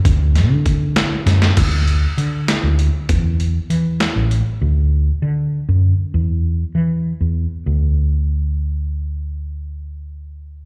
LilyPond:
<<
  \new Staff \with { instrumentName = "Fretless electric bass" } { \clef bass \time 5/8 \key d \major \tempo 4 = 98 d,8. d4~ d16 fis,8 | d,4 d8. d,8 r16 | e,4 e8. a,,8 r16 | d,4 d8. fis,8 r16 |
e,4 e8. e,8 r16 | d,2~ d,8~ | d,2~ d,8 | }
  \new DrumStaff \with { instrumentName = "Drums" } \drummode { \time 5/8 <hh bd>8 <hh sn>8 <hh bd>8 <hh sn>8 <hh sn>16 sn16 | <cymc hh bd>8 hh8 hh8 <hh sn>8 hh8 | <hh bd>8 hh8 hh8 <hh sn>8 hh8 | r4. r4 |
r4. r4 | r4. r4 | r4. r4 | }
>>